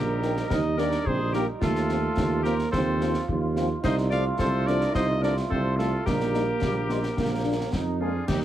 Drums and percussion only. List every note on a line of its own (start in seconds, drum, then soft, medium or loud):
0.23 snare soft
0.37 snare soft
0.50 concert bass drum medium
0.50 snare medium
0.78 snare medium
0.92 snare soft
1.06 concert bass drum medium
1.34 snare soft
1.62 concert bass drum medium
1.62 snare medium
1.75 snare soft
1.89 snare soft
2.17 concert bass drum medium
2.17 snare medium
2.45 snare soft
2.59 snare soft
2.73 concert bass drum medium
2.73 snare medium
3.01 snare soft
3.14 snare soft
3.28 concert bass drum medium
3.56 snare soft
3.84 concert bass drum medium
3.84 snare medium
3.84 crash soft
3.98 snare soft
4.11 snare medium
4.39 concert bass drum medium
4.39 snare medium
4.67 snare soft
4.81 snare soft
4.95 concert bass drum medium
4.95 snare medium
5.23 snare medium
5.37 snare soft
5.51 concert bass drum medium
5.79 snare soft
6.06 concert bass drum medium
6.06 snare medium
6.20 snare soft
6.34 snare soft
6.62 concert bass drum medium
6.62 snare medium
6.90 snare soft
7.03 snare soft
7.17 concert bass drum medium
7.17 snare medium
7.73 concert bass drum medium
7.73 snare medium
8.28 concert bass drum medium
8.28 snare medium
8.28 crash soft